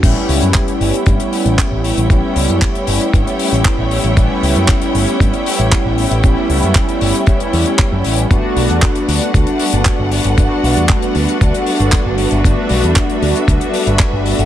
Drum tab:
CC |x---------------|----------------|----------------|----------------|
HH |x-oxxxoxxxoxx-ox|x-oxxxoxxxoxx-ox|x-oxxxoxxxoxx-ox|x-oxxxoxxxoxx-ox|
CP |----x-------x---|----x-------x---|----x-------x---|----x-------x---|
BD |o---o---o---o---|o---o---o---o---|o---o---o---o---|o---o---o---o---|

CC |----------------|----------------|----------------|
HH |x-oxxxoxxxoxx-ox|x-oxxxoxxxoxx-ox|x-oxxxoxxxoxx-ox|
CP |----x-------x---|----x-------x---|----x-------x---|
BD |o---o---o---o---|o---o---o---o---|o---o---o---o---|